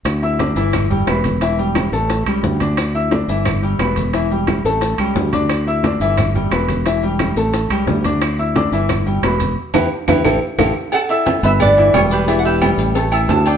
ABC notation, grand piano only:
X:1
M:4/4
L:1/8
Q:1/4=177
K:Edor
V:1 name="Grand piano"
z [Eee'] [Ddd'] [E,Ee]2 [G,Gg] [B,Bb]2 | [E,Ee] [G,Gg]2 [A,Aa]2 [G,Gg]2 [Ddd']- | [Ddd'] [Eee'] [Ddd'] [E,Ee]2 [G,Gg] [B,Bb]2 | [E,Ee] [G,Gg]2 [A,Aa]2 [G,Gg]2 [Ddd']- |
[Ddd'] [Eee'] [Ddd'] [E,Ee]2 [G,Gg] [B,Bb]2 | [E,Ee] [G,Gg]2 [A,Aa]2 [G,Gg]2 [Ddd']- | [Ddd'] [Eee'] [Ddd'] [E,Ee]2 [G,Gg] [B,Bb]2 | z [EGB] z [EGB] [EGA] z [EGA] z |
z [Eee']2 [B,Bb]2 [E,Ee] [G,Gg]2 | [E,Ee]2 [G,Gg]2 [A,Aa] [Eee']2 [Ddd'] |]